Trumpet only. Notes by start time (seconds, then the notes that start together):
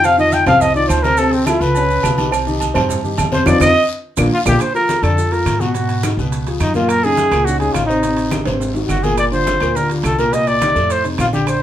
0.05 F5
0.19 D#5
0.33 G5
0.47 F5
0.61 D#5
0.75 D5
0.88 C5
1.03 A#4
1.18 A4
1.33 C4
1.46 E4
1.61 B4
3.33 C5
3.47 D5
3.61 D#5
4.33 F4
4.48 G4
4.62 C5
4.75 A#4
5.03 A4
5.32 A#4
5.60 F#4
6.61 D#4
6.76 F4
6.89 A#4
7.04 G#4
7.45 F#4
7.59 G#4
7.73 F4
7.86 D#4
8.88 F#4
9.03 G#4
9.19 D5
9.33 C5
9.76 A#4
10.05 A4
10.19 A#4
10.34 D#5
10.47 D5
10.92 C5
11.20 F4
11.34 G4
11.47 C5